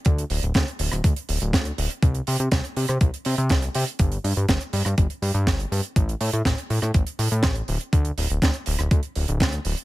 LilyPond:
<<
  \new Staff \with { instrumentName = "Analog synth bass" } { \clef bass \time 4/4 \key d \dorian \tempo 4 = 122 d,8 d,,16 d,,16 d,16 r16 d,,16 d,,16 d,16 r16 d,,16 d,,16 d,8 d,,16 r16 | c,8 c16 c16 c,16 r16 c16 c16 c,16 r16 c16 c16 c,8 c16 r16 | g,,8 g,16 g,16 g,,16 r16 g,16 g,16 g,,16 r16 g,16 g,16 g,,8 g,16 r16 | a,,8 a,16 a,16 a,,16 r16 a,16 a,16 a,,16 r16 a,16 a,16 a,,8 d,,16 r16 |
d,8 d,,16 d,,16 d,16 r16 d,,16 d,,16 d,16 r16 d,,16 d,,16 d,8 d,,16 r16 | }
  \new DrumStaff \with { instrumentName = "Drums" } \drummode { \time 4/4 <hh bd>16 hh16 hho16 hh16 <hh bd sn>16 hh16 hho16 <hh ss>16 <hh bd>16 hh16 hho16 hh16 <hh bd sn>16 hh16 hho16 hh16 | <hh bd>16 hh16 hho16 hh16 <hh bd sn>16 hh16 hho16 <hh ss>16 <hh bd>16 hh16 hho16 hh16 <hh bd sn>16 hh16 hho16 hh16 | <hh bd>16 hh16 hho16 hh16 <hh bd sn>16 hh16 hho16 <hh ss>16 <hh bd>16 hh16 hho16 hh16 <hh bd sn>16 hh16 hho16 hh16 | <hh bd>16 hh16 hho16 hh16 <hh bd sn>16 hh16 hho16 <hh ss>16 <hh bd>16 hh16 hho16 hh16 <hh bd sn>16 hh16 hho16 hh16 |
<hh bd>16 hh16 hho16 hh16 <hh bd sn>16 hh16 hho16 <hh ss>16 <hh bd>16 hh16 hho16 hh16 <hh bd sn>16 hh16 hho16 hh16 | }
>>